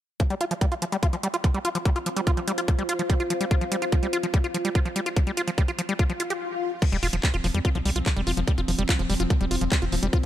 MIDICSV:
0, 0, Header, 1, 7, 480
1, 0, Start_track
1, 0, Tempo, 413793
1, 231, Time_signature, 4, 2, 24, 8
1, 11897, End_track
2, 0, Start_track
2, 0, Title_t, "Ambient pad"
2, 0, Program_c, 0, 92
2, 231, Note_on_c, 0, 65, 86
2, 385, Note_on_c, 0, 72, 88
2, 1190, Note_on_c, 0, 77, 77
2, 7431, Note_off_c, 0, 65, 0
2, 7431, Note_off_c, 0, 77, 0
2, 7432, Note_off_c, 0, 72, 0
2, 11897, End_track
3, 0, Start_track
3, 0, Title_t, "Synth texture"
3, 0, Program_c, 1, 99
3, 7912, Note_on_c, 1, 53, 74
3, 7912, Note_on_c, 1, 60, 78
3, 11897, Note_off_c, 1, 53, 0
3, 11897, Note_off_c, 1, 60, 0
3, 11897, End_track
4, 0, Start_track
4, 0, Title_t, "Acid bass"
4, 0, Program_c, 2, 38
4, 231, Note_on_c, 2, 53, 102
4, 262, Note_off_c, 2, 53, 0
4, 351, Note_on_c, 2, 55, 99
4, 402, Note_off_c, 2, 55, 0
4, 471, Note_on_c, 2, 65, 105
4, 522, Note_off_c, 2, 65, 0
4, 591, Note_on_c, 2, 53, 98
4, 622, Note_off_c, 2, 53, 0
4, 711, Note_on_c, 2, 55, 103
4, 762, Note_off_c, 2, 55, 0
4, 831, Note_on_c, 2, 65, 103
4, 862, Note_off_c, 2, 65, 0
4, 951, Note_on_c, 2, 53, 98
4, 982, Note_off_c, 2, 53, 0
4, 1071, Note_on_c, 2, 55, 104
4, 1122, Note_off_c, 2, 55, 0
4, 1191, Note_on_c, 2, 65, 100
4, 1242, Note_off_c, 2, 65, 0
4, 1311, Note_on_c, 2, 53, 99
4, 1342, Note_off_c, 2, 53, 0
4, 1431, Note_on_c, 2, 55, 97
4, 1482, Note_off_c, 2, 55, 0
4, 1551, Note_on_c, 2, 65, 97
4, 1582, Note_off_c, 2, 65, 0
4, 1671, Note_on_c, 2, 53, 104
4, 1702, Note_off_c, 2, 53, 0
4, 1791, Note_on_c, 2, 55, 99
4, 1842, Note_off_c, 2, 55, 0
4, 1911, Note_on_c, 2, 65, 102
4, 1962, Note_off_c, 2, 65, 0
4, 2032, Note_on_c, 2, 53, 105
4, 2062, Note_off_c, 2, 53, 0
4, 2151, Note_on_c, 2, 55, 103
4, 2202, Note_off_c, 2, 55, 0
4, 2271, Note_on_c, 2, 65, 97
4, 2302, Note_off_c, 2, 65, 0
4, 2391, Note_on_c, 2, 53, 101
4, 2422, Note_off_c, 2, 53, 0
4, 2511, Note_on_c, 2, 55, 101
4, 2562, Note_off_c, 2, 55, 0
4, 2631, Note_on_c, 2, 65, 103
4, 2682, Note_off_c, 2, 65, 0
4, 2752, Note_on_c, 2, 53, 107
4, 2782, Note_off_c, 2, 53, 0
4, 2872, Note_on_c, 2, 55, 97
4, 2923, Note_off_c, 2, 55, 0
4, 2992, Note_on_c, 2, 65, 102
4, 3022, Note_off_c, 2, 65, 0
4, 3112, Note_on_c, 2, 53, 104
4, 3142, Note_off_c, 2, 53, 0
4, 3232, Note_on_c, 2, 55, 102
4, 3283, Note_off_c, 2, 55, 0
4, 3352, Note_on_c, 2, 65, 103
4, 3402, Note_off_c, 2, 65, 0
4, 3472, Note_on_c, 2, 53, 100
4, 3502, Note_off_c, 2, 53, 0
4, 3592, Note_on_c, 2, 55, 102
4, 3643, Note_off_c, 2, 55, 0
4, 3712, Note_on_c, 2, 65, 105
4, 3742, Note_off_c, 2, 65, 0
4, 3831, Note_on_c, 2, 53, 100
4, 3862, Note_off_c, 2, 53, 0
4, 3951, Note_on_c, 2, 55, 100
4, 4002, Note_off_c, 2, 55, 0
4, 4071, Note_on_c, 2, 65, 102
4, 4122, Note_off_c, 2, 65, 0
4, 4191, Note_on_c, 2, 53, 100
4, 4222, Note_off_c, 2, 53, 0
4, 4311, Note_on_c, 2, 55, 102
4, 4362, Note_off_c, 2, 55, 0
4, 4431, Note_on_c, 2, 65, 100
4, 4462, Note_off_c, 2, 65, 0
4, 4551, Note_on_c, 2, 53, 103
4, 4582, Note_off_c, 2, 53, 0
4, 4671, Note_on_c, 2, 55, 104
4, 4722, Note_off_c, 2, 55, 0
4, 4791, Note_on_c, 2, 65, 94
4, 4842, Note_off_c, 2, 65, 0
4, 4911, Note_on_c, 2, 53, 104
4, 4942, Note_off_c, 2, 53, 0
4, 5031, Note_on_c, 2, 55, 100
4, 5082, Note_off_c, 2, 55, 0
4, 5151, Note_on_c, 2, 65, 101
4, 5182, Note_off_c, 2, 65, 0
4, 5272, Note_on_c, 2, 53, 102
4, 5302, Note_off_c, 2, 53, 0
4, 5391, Note_on_c, 2, 55, 97
4, 5442, Note_off_c, 2, 55, 0
4, 5511, Note_on_c, 2, 65, 97
4, 5562, Note_off_c, 2, 65, 0
4, 5631, Note_on_c, 2, 53, 102
4, 5662, Note_off_c, 2, 53, 0
4, 5752, Note_on_c, 2, 55, 100
4, 5802, Note_off_c, 2, 55, 0
4, 5872, Note_on_c, 2, 65, 97
4, 5902, Note_off_c, 2, 65, 0
4, 5992, Note_on_c, 2, 53, 104
4, 6022, Note_off_c, 2, 53, 0
4, 6112, Note_on_c, 2, 55, 104
4, 6163, Note_off_c, 2, 55, 0
4, 6232, Note_on_c, 2, 65, 103
4, 6283, Note_off_c, 2, 65, 0
4, 6352, Note_on_c, 2, 53, 105
4, 6382, Note_off_c, 2, 53, 0
4, 6472, Note_on_c, 2, 55, 104
4, 6523, Note_off_c, 2, 55, 0
4, 6592, Note_on_c, 2, 65, 106
4, 6622, Note_off_c, 2, 65, 0
4, 6712, Note_on_c, 2, 53, 95
4, 6742, Note_off_c, 2, 53, 0
4, 6832, Note_on_c, 2, 55, 98
4, 6882, Note_off_c, 2, 55, 0
4, 6952, Note_on_c, 2, 65, 101
4, 7002, Note_off_c, 2, 65, 0
4, 7072, Note_on_c, 2, 53, 106
4, 7102, Note_off_c, 2, 53, 0
4, 7192, Note_on_c, 2, 65, 73
4, 7222, Note_off_c, 2, 65, 0
4, 7311, Note_on_c, 2, 67, 74
4, 7342, Note_off_c, 2, 67, 0
4, 7912, Note_on_c, 2, 53, 106
4, 7942, Note_off_c, 2, 53, 0
4, 8032, Note_on_c, 2, 55, 100
4, 8082, Note_off_c, 2, 55, 0
4, 8152, Note_on_c, 2, 65, 103
4, 8202, Note_off_c, 2, 65, 0
4, 8271, Note_on_c, 2, 53, 105
4, 8302, Note_off_c, 2, 53, 0
4, 8391, Note_on_c, 2, 55, 98
4, 8442, Note_off_c, 2, 55, 0
4, 8512, Note_on_c, 2, 65, 102
4, 8542, Note_off_c, 2, 65, 0
4, 8632, Note_on_c, 2, 53, 97
4, 8662, Note_off_c, 2, 53, 0
4, 8752, Note_on_c, 2, 55, 102
4, 8803, Note_off_c, 2, 55, 0
4, 8872, Note_on_c, 2, 65, 100
4, 8923, Note_off_c, 2, 65, 0
4, 8992, Note_on_c, 2, 53, 103
4, 9022, Note_off_c, 2, 53, 0
4, 9112, Note_on_c, 2, 55, 102
4, 9162, Note_off_c, 2, 55, 0
4, 9232, Note_on_c, 2, 65, 101
4, 9262, Note_off_c, 2, 65, 0
4, 9352, Note_on_c, 2, 53, 105
4, 9382, Note_off_c, 2, 53, 0
4, 9472, Note_on_c, 2, 55, 105
4, 9522, Note_off_c, 2, 55, 0
4, 9592, Note_on_c, 2, 65, 109
4, 9642, Note_off_c, 2, 65, 0
4, 9712, Note_on_c, 2, 53, 102
4, 9742, Note_off_c, 2, 53, 0
4, 9832, Note_on_c, 2, 55, 101
4, 9883, Note_off_c, 2, 55, 0
4, 9952, Note_on_c, 2, 65, 99
4, 9982, Note_off_c, 2, 65, 0
4, 10071, Note_on_c, 2, 53, 104
4, 10102, Note_off_c, 2, 53, 0
4, 10192, Note_on_c, 2, 55, 100
4, 10242, Note_off_c, 2, 55, 0
4, 10311, Note_on_c, 2, 65, 105
4, 10362, Note_off_c, 2, 65, 0
4, 10432, Note_on_c, 2, 53, 103
4, 10462, Note_off_c, 2, 53, 0
4, 10551, Note_on_c, 2, 55, 93
4, 10602, Note_off_c, 2, 55, 0
4, 10671, Note_on_c, 2, 65, 102
4, 10702, Note_off_c, 2, 65, 0
4, 10792, Note_on_c, 2, 53, 104
4, 10822, Note_off_c, 2, 53, 0
4, 10912, Note_on_c, 2, 55, 102
4, 10962, Note_off_c, 2, 55, 0
4, 11032, Note_on_c, 2, 65, 99
4, 11083, Note_off_c, 2, 65, 0
4, 11152, Note_on_c, 2, 53, 104
4, 11182, Note_off_c, 2, 53, 0
4, 11272, Note_on_c, 2, 55, 100
4, 11323, Note_off_c, 2, 55, 0
4, 11392, Note_on_c, 2, 65, 103
4, 11422, Note_off_c, 2, 65, 0
4, 11511, Note_on_c, 2, 53, 106
4, 11542, Note_off_c, 2, 53, 0
4, 11632, Note_on_c, 2, 55, 98
4, 11682, Note_off_c, 2, 55, 0
4, 11751, Note_on_c, 2, 65, 100
4, 11802, Note_off_c, 2, 65, 0
4, 11897, End_track
5, 0, Start_track
5, 0, Title_t, "Analog synth bass"
5, 0, Program_c, 3, 38
5, 8032, Note_on_c, 3, 29, 84
5, 8108, Note_off_c, 3, 29, 0
5, 8152, Note_on_c, 3, 29, 100
5, 8228, Note_off_c, 3, 29, 0
5, 8272, Note_on_c, 3, 29, 96
5, 8348, Note_off_c, 3, 29, 0
5, 8512, Note_on_c, 3, 29, 86
5, 8588, Note_off_c, 3, 29, 0
5, 8632, Note_on_c, 3, 29, 93
5, 8708, Note_off_c, 3, 29, 0
5, 8751, Note_on_c, 3, 41, 90
5, 8827, Note_off_c, 3, 41, 0
5, 8991, Note_on_c, 3, 36, 88
5, 9067, Note_off_c, 3, 36, 0
5, 9111, Note_on_c, 3, 36, 96
5, 9187, Note_off_c, 3, 36, 0
5, 9231, Note_on_c, 3, 36, 92
5, 9307, Note_off_c, 3, 36, 0
5, 9471, Note_on_c, 3, 29, 91
5, 9547, Note_off_c, 3, 29, 0
5, 9591, Note_on_c, 3, 29, 99
5, 9667, Note_off_c, 3, 29, 0
5, 9711, Note_on_c, 3, 29, 90
5, 9787, Note_off_c, 3, 29, 0
5, 9951, Note_on_c, 3, 29, 86
5, 10027, Note_off_c, 3, 29, 0
5, 10071, Note_on_c, 3, 29, 96
5, 10147, Note_off_c, 3, 29, 0
5, 10191, Note_on_c, 3, 29, 96
5, 10267, Note_off_c, 3, 29, 0
5, 10431, Note_on_c, 3, 29, 86
5, 10507, Note_off_c, 3, 29, 0
5, 10551, Note_on_c, 3, 29, 92
5, 10627, Note_off_c, 3, 29, 0
5, 10671, Note_on_c, 3, 29, 91
5, 10747, Note_off_c, 3, 29, 0
5, 10911, Note_on_c, 3, 29, 85
5, 10987, Note_off_c, 3, 29, 0
5, 11031, Note_on_c, 3, 29, 100
5, 11107, Note_off_c, 3, 29, 0
5, 11151, Note_on_c, 3, 29, 92
5, 11227, Note_off_c, 3, 29, 0
5, 11391, Note_on_c, 3, 29, 91
5, 11467, Note_off_c, 3, 29, 0
5, 11511, Note_on_c, 3, 27, 97
5, 11587, Note_off_c, 3, 27, 0
5, 11631, Note_on_c, 3, 29, 90
5, 11707, Note_off_c, 3, 29, 0
5, 11897, End_track
6, 0, Start_track
6, 0, Title_t, "Swell"
6, 0, Program_c, 4, 103
6, 6952, Note_on_c, 4, 60, 75
6, 7911, Note_off_c, 4, 60, 0
6, 11897, End_track
7, 0, Start_track
7, 0, Title_t, "Drums"
7, 231, Note_on_c, 9, 36, 112
7, 231, Note_on_c, 9, 42, 52
7, 347, Note_off_c, 9, 36, 0
7, 347, Note_off_c, 9, 42, 0
7, 351, Note_on_c, 9, 42, 27
7, 467, Note_off_c, 9, 42, 0
7, 472, Note_on_c, 9, 42, 86
7, 588, Note_off_c, 9, 42, 0
7, 591, Note_on_c, 9, 42, 55
7, 707, Note_off_c, 9, 42, 0
7, 711, Note_on_c, 9, 36, 112
7, 712, Note_on_c, 9, 42, 51
7, 827, Note_off_c, 9, 36, 0
7, 828, Note_off_c, 9, 42, 0
7, 831, Note_on_c, 9, 42, 28
7, 947, Note_off_c, 9, 42, 0
7, 951, Note_on_c, 9, 42, 93
7, 1067, Note_off_c, 9, 42, 0
7, 1071, Note_on_c, 9, 42, 52
7, 1187, Note_off_c, 9, 42, 0
7, 1191, Note_on_c, 9, 36, 115
7, 1191, Note_on_c, 9, 42, 51
7, 1307, Note_off_c, 9, 36, 0
7, 1307, Note_off_c, 9, 42, 0
7, 1311, Note_on_c, 9, 42, 28
7, 1427, Note_off_c, 9, 42, 0
7, 1431, Note_on_c, 9, 42, 92
7, 1547, Note_off_c, 9, 42, 0
7, 1551, Note_on_c, 9, 42, 53
7, 1667, Note_off_c, 9, 42, 0
7, 1671, Note_on_c, 9, 36, 114
7, 1671, Note_on_c, 9, 42, 52
7, 1787, Note_off_c, 9, 36, 0
7, 1787, Note_off_c, 9, 42, 0
7, 1791, Note_on_c, 9, 42, 26
7, 1907, Note_off_c, 9, 42, 0
7, 1911, Note_on_c, 9, 42, 91
7, 2027, Note_off_c, 9, 42, 0
7, 2031, Note_on_c, 9, 42, 50
7, 2147, Note_off_c, 9, 42, 0
7, 2151, Note_on_c, 9, 36, 126
7, 2151, Note_on_c, 9, 42, 52
7, 2267, Note_off_c, 9, 36, 0
7, 2267, Note_off_c, 9, 42, 0
7, 2271, Note_on_c, 9, 42, 26
7, 2387, Note_off_c, 9, 42, 0
7, 2391, Note_on_c, 9, 42, 92
7, 2507, Note_off_c, 9, 42, 0
7, 2511, Note_on_c, 9, 42, 52
7, 2627, Note_off_c, 9, 42, 0
7, 2631, Note_on_c, 9, 36, 120
7, 2631, Note_on_c, 9, 42, 51
7, 2747, Note_off_c, 9, 36, 0
7, 2747, Note_off_c, 9, 42, 0
7, 2751, Note_on_c, 9, 42, 28
7, 2867, Note_off_c, 9, 42, 0
7, 2872, Note_on_c, 9, 42, 88
7, 2988, Note_off_c, 9, 42, 0
7, 2991, Note_on_c, 9, 42, 53
7, 3107, Note_off_c, 9, 42, 0
7, 3111, Note_on_c, 9, 36, 123
7, 3111, Note_on_c, 9, 42, 52
7, 3227, Note_off_c, 9, 36, 0
7, 3227, Note_off_c, 9, 42, 0
7, 3231, Note_on_c, 9, 42, 27
7, 3347, Note_off_c, 9, 42, 0
7, 3351, Note_on_c, 9, 42, 91
7, 3467, Note_off_c, 9, 42, 0
7, 3471, Note_on_c, 9, 42, 52
7, 3587, Note_off_c, 9, 42, 0
7, 3591, Note_on_c, 9, 36, 116
7, 3591, Note_on_c, 9, 42, 53
7, 3707, Note_off_c, 9, 36, 0
7, 3707, Note_off_c, 9, 42, 0
7, 3711, Note_on_c, 9, 42, 27
7, 3827, Note_off_c, 9, 42, 0
7, 3831, Note_on_c, 9, 42, 89
7, 3947, Note_off_c, 9, 42, 0
7, 3951, Note_on_c, 9, 42, 52
7, 4067, Note_off_c, 9, 42, 0
7, 4071, Note_on_c, 9, 36, 124
7, 4071, Note_on_c, 9, 42, 49
7, 4187, Note_off_c, 9, 36, 0
7, 4187, Note_off_c, 9, 42, 0
7, 4191, Note_on_c, 9, 42, 26
7, 4307, Note_off_c, 9, 42, 0
7, 4311, Note_on_c, 9, 42, 88
7, 4427, Note_off_c, 9, 42, 0
7, 4432, Note_on_c, 9, 42, 50
7, 4548, Note_off_c, 9, 42, 0
7, 4551, Note_on_c, 9, 36, 125
7, 4552, Note_on_c, 9, 42, 50
7, 4667, Note_off_c, 9, 36, 0
7, 4668, Note_off_c, 9, 42, 0
7, 4672, Note_on_c, 9, 42, 26
7, 4788, Note_off_c, 9, 42, 0
7, 4792, Note_on_c, 9, 42, 83
7, 4908, Note_off_c, 9, 42, 0
7, 4912, Note_on_c, 9, 42, 50
7, 5028, Note_off_c, 9, 42, 0
7, 5031, Note_on_c, 9, 36, 123
7, 5032, Note_on_c, 9, 42, 49
7, 5147, Note_off_c, 9, 36, 0
7, 5148, Note_off_c, 9, 42, 0
7, 5152, Note_on_c, 9, 42, 26
7, 5268, Note_off_c, 9, 42, 0
7, 5272, Note_on_c, 9, 42, 87
7, 5388, Note_off_c, 9, 42, 0
7, 5392, Note_on_c, 9, 42, 52
7, 5508, Note_off_c, 9, 42, 0
7, 5511, Note_on_c, 9, 36, 119
7, 5512, Note_on_c, 9, 42, 52
7, 5627, Note_off_c, 9, 36, 0
7, 5628, Note_off_c, 9, 42, 0
7, 5632, Note_on_c, 9, 42, 26
7, 5748, Note_off_c, 9, 42, 0
7, 5752, Note_on_c, 9, 42, 90
7, 5868, Note_off_c, 9, 42, 0
7, 5871, Note_on_c, 9, 42, 51
7, 5987, Note_off_c, 9, 42, 0
7, 5991, Note_on_c, 9, 36, 119
7, 5992, Note_on_c, 9, 42, 46
7, 6107, Note_off_c, 9, 36, 0
7, 6108, Note_off_c, 9, 42, 0
7, 6112, Note_on_c, 9, 42, 25
7, 6228, Note_off_c, 9, 42, 0
7, 6232, Note_on_c, 9, 42, 88
7, 6348, Note_off_c, 9, 42, 0
7, 6351, Note_on_c, 9, 42, 49
7, 6467, Note_off_c, 9, 42, 0
7, 6471, Note_on_c, 9, 36, 119
7, 6472, Note_on_c, 9, 42, 48
7, 6587, Note_off_c, 9, 36, 0
7, 6588, Note_off_c, 9, 42, 0
7, 6591, Note_on_c, 9, 42, 27
7, 6707, Note_off_c, 9, 42, 0
7, 6711, Note_on_c, 9, 42, 86
7, 6827, Note_off_c, 9, 42, 0
7, 6831, Note_on_c, 9, 42, 49
7, 6947, Note_off_c, 9, 42, 0
7, 6951, Note_on_c, 9, 36, 117
7, 6951, Note_on_c, 9, 42, 48
7, 7067, Note_off_c, 9, 36, 0
7, 7067, Note_off_c, 9, 42, 0
7, 7071, Note_on_c, 9, 42, 26
7, 7187, Note_off_c, 9, 42, 0
7, 7191, Note_on_c, 9, 42, 87
7, 7307, Note_off_c, 9, 42, 0
7, 7311, Note_on_c, 9, 42, 51
7, 7427, Note_off_c, 9, 42, 0
7, 7912, Note_on_c, 9, 36, 119
7, 7912, Note_on_c, 9, 42, 51
7, 7912, Note_on_c, 9, 49, 92
7, 8028, Note_off_c, 9, 36, 0
7, 8028, Note_off_c, 9, 42, 0
7, 8028, Note_off_c, 9, 49, 0
7, 8032, Note_on_c, 9, 42, 29
7, 8148, Note_off_c, 9, 42, 0
7, 8151, Note_on_c, 9, 46, 99
7, 8267, Note_off_c, 9, 46, 0
7, 8271, Note_on_c, 9, 42, 57
7, 8387, Note_off_c, 9, 42, 0
7, 8392, Note_on_c, 9, 36, 115
7, 8392, Note_on_c, 9, 39, 119
7, 8392, Note_on_c, 9, 42, 51
7, 8508, Note_off_c, 9, 36, 0
7, 8508, Note_off_c, 9, 39, 0
7, 8508, Note_off_c, 9, 42, 0
7, 8512, Note_on_c, 9, 42, 29
7, 8628, Note_off_c, 9, 42, 0
7, 8632, Note_on_c, 9, 46, 88
7, 8748, Note_off_c, 9, 46, 0
7, 8752, Note_on_c, 9, 42, 52
7, 8868, Note_off_c, 9, 42, 0
7, 8871, Note_on_c, 9, 36, 121
7, 8871, Note_on_c, 9, 42, 54
7, 8987, Note_off_c, 9, 36, 0
7, 8987, Note_off_c, 9, 42, 0
7, 8991, Note_on_c, 9, 42, 29
7, 9107, Note_off_c, 9, 42, 0
7, 9111, Note_on_c, 9, 46, 104
7, 9227, Note_off_c, 9, 46, 0
7, 9231, Note_on_c, 9, 42, 52
7, 9347, Note_off_c, 9, 42, 0
7, 9351, Note_on_c, 9, 36, 116
7, 9351, Note_on_c, 9, 39, 125
7, 9351, Note_on_c, 9, 42, 59
7, 9467, Note_off_c, 9, 36, 0
7, 9467, Note_off_c, 9, 39, 0
7, 9467, Note_off_c, 9, 42, 0
7, 9471, Note_on_c, 9, 42, 27
7, 9587, Note_off_c, 9, 42, 0
7, 9591, Note_on_c, 9, 46, 93
7, 9707, Note_off_c, 9, 46, 0
7, 9711, Note_on_c, 9, 42, 57
7, 9827, Note_off_c, 9, 42, 0
7, 9831, Note_on_c, 9, 36, 121
7, 9831, Note_on_c, 9, 42, 52
7, 9947, Note_off_c, 9, 36, 0
7, 9947, Note_off_c, 9, 42, 0
7, 9951, Note_on_c, 9, 42, 26
7, 10067, Note_off_c, 9, 42, 0
7, 10071, Note_on_c, 9, 46, 105
7, 10187, Note_off_c, 9, 46, 0
7, 10191, Note_on_c, 9, 42, 53
7, 10307, Note_off_c, 9, 42, 0
7, 10311, Note_on_c, 9, 36, 123
7, 10311, Note_on_c, 9, 39, 117
7, 10311, Note_on_c, 9, 42, 50
7, 10427, Note_off_c, 9, 36, 0
7, 10427, Note_off_c, 9, 39, 0
7, 10427, Note_off_c, 9, 42, 0
7, 10431, Note_on_c, 9, 42, 28
7, 10547, Note_off_c, 9, 42, 0
7, 10551, Note_on_c, 9, 46, 93
7, 10667, Note_off_c, 9, 46, 0
7, 10671, Note_on_c, 9, 42, 53
7, 10787, Note_off_c, 9, 42, 0
7, 10791, Note_on_c, 9, 36, 124
7, 10791, Note_on_c, 9, 42, 53
7, 10907, Note_off_c, 9, 36, 0
7, 10907, Note_off_c, 9, 42, 0
7, 10911, Note_on_c, 9, 42, 27
7, 11027, Note_off_c, 9, 42, 0
7, 11031, Note_on_c, 9, 46, 107
7, 11147, Note_off_c, 9, 46, 0
7, 11151, Note_on_c, 9, 42, 52
7, 11267, Note_off_c, 9, 42, 0
7, 11271, Note_on_c, 9, 36, 120
7, 11271, Note_on_c, 9, 39, 127
7, 11271, Note_on_c, 9, 42, 55
7, 11387, Note_off_c, 9, 36, 0
7, 11387, Note_off_c, 9, 39, 0
7, 11387, Note_off_c, 9, 42, 0
7, 11391, Note_on_c, 9, 42, 25
7, 11507, Note_off_c, 9, 42, 0
7, 11511, Note_on_c, 9, 46, 93
7, 11627, Note_off_c, 9, 46, 0
7, 11631, Note_on_c, 9, 42, 56
7, 11747, Note_off_c, 9, 42, 0
7, 11751, Note_on_c, 9, 36, 126
7, 11751, Note_on_c, 9, 42, 49
7, 11867, Note_off_c, 9, 36, 0
7, 11867, Note_off_c, 9, 42, 0
7, 11897, End_track
0, 0, End_of_file